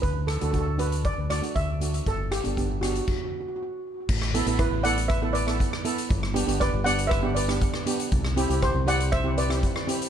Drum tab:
CC |----------------|--------x-------|x---------------|----------------|
HH |x-xxx-xxx-xxx-xx|x-xxx-xx--------|--xxx-xxx-xxx-xx|x-xxx-xxx-xxx-xx|
SD |--r-------r-----|--r---r---------|-r--r---r--r-r--|-r--r---r--r-r--|
BD |o---o---o---o---|o---o---o-------|o---o---o---o---|o---o---o---o---|

CC |----------------|
HH |x-xxx-xxx-xxx-xx|
SD |-r--r---r--r-r--|
BD |o---o---o---o---|